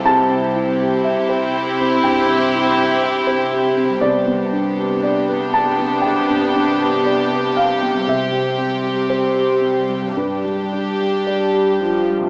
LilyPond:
<<
  \new Staff \with { instrumentName = "Grand piano" } { \time 4/4 \key c \major \tempo 4 = 59 << { a''2 g''2 | d''4. a''8 g''4. f''8 | e''4 r4 b'4 r4 | } \\ { c,16 c'16 e'16 g'16 e''16 c''16 g'16 c'16 g,16 c'16 e'16 g'16 e''16 c''16 g'16 c'16 | c,16 b16 d'16 g'16 d''16 b'16 g'16 b16 c,16 g,16 d'16 g'16 d''16 b'16 g'16 b16 | c,16 g16 c'16 g'16 c''16 g'16 c'16 g16 g,16 g16 d'16 g'16 d''16 g'16 d'16 g16 | } >> }
  \new Staff \with { instrumentName = "Violin section" } { \time 4/4 \key c \major g'1 | g'1~ | g'2 g'2 | }
  \new Staff \with { instrumentName = "Violin section" } { \time 4/4 \key c \major e'1 | d'1 | c'2 d'2 | }
  \new Staff \with { instrumentName = "Harp" } { \time 4/4 \key c \major <c g e' c''>1 | <c g g' b'>1 | <c g g' c''>2 <g, g g' d''>2 | }
  \new Staff \with { instrumentName = "Viola section" } { \clef bass \time 4/4 \key c \major c'1 | b1 | g2. g8 f8 | }
  \new Staff \with { instrumentName = "Cello section" } { \clef bass \time 4/4 \key c \major c1 | c1~ | c2 g,2 | }
>>